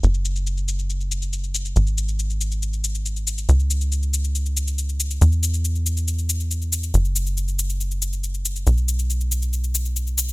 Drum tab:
SH |xxxxxxxxxxxxxxxx|xxxxxxxxxxxxxxxx|xxxxxxxxxxxxxxxx|xxxxxxxxxxxxxxxx|

SH |xxxxxxxxxxxxxxxx|xxxxxxxxxxxxxxxx|